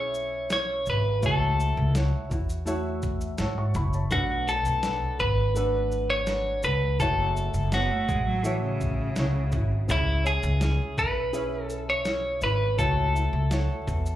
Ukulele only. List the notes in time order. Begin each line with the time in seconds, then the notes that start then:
Already playing: C#4 E4 G#4 C#5
0.50 C#4 E4 G#4 C#5
1.22 E4 F#4 A4 C#5
1.94 E4 F#4 A4 C#5
2.29 E4 F#4 C#5
2.66 E4 F#4 A4 C#5
3.37 E4 F#4 A4 C#5
3.74 E4 F#4 C#5
4.10 D4 F#4 A4 B4
4.47 D4 F#4 A4
4.82 D4 F#4 A4 B4
5.55 D4 F#4 A4 B4
6.27 D4 F#4 A4 B4
6.63 D4 F#4 A4
6.99 E4 F#4 A4 C#5
7.71 E4 F#4 A4 C#5
8.44 E4 F#4 A4 C#5
9.17 E4 F#4 A4 C#5
9.52 E4 F#4 C#5
9.89 C#4 E4 G#4 C#5
10.24 C#4 E4 C#5
10.60 C#4 E4 G#4 C#5
11.33 C#4 E4 G#4 C#5
12.05 C#4 E4 G#4 C#5
12.41 C#4 E4 C#5
12.78 E4 F#4 A4 C#5
13.14 E4 F#4 C#5
13.50 E4 F#4 A4 C#5